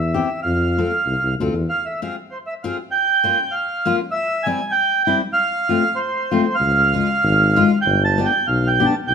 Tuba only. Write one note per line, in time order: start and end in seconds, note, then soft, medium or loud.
0.00 0.23 E2 medium
0.45 0.85 F2 medium
1.06 1.17 C2 medium
1.23 1.38 C2 medium
1.39 1.52 D2 medium
1.53 1.66 E2 medium
6.61 7.01 C#2 medium
7.23 7.63 G#1 medium
7.86 8.26 G1 loud
8.48 8.87 B1 medium
9.08 9.14 C2 medium